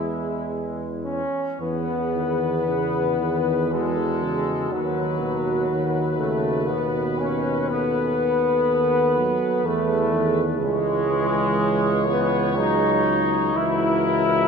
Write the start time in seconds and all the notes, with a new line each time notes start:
Already playing: E2 E3 G#3 E4
1.04 C#4
1.60 E2 E3 B3 G#4 B4
2.14 D#3
2.67 C#3
3.20 D#3
3.71 E3 G#3 F#4 A4
4.22 C#3
4.71 D#2 D#3 F#3 B4
5.20 B2
5.69 D#3
6.17 C#3 A3
6.67 B2 B3
7.17 C#4
7.68 B3 A4
8.69 D#3
9.17 F#3
9.64 E2 E3 A3 G#4
10.12 D#3
10.59 C#2 E3 G#3 C#5
12.08 B3
12.57 F#3 D#4
13.55 C#2 E3 E4 F#4 A#4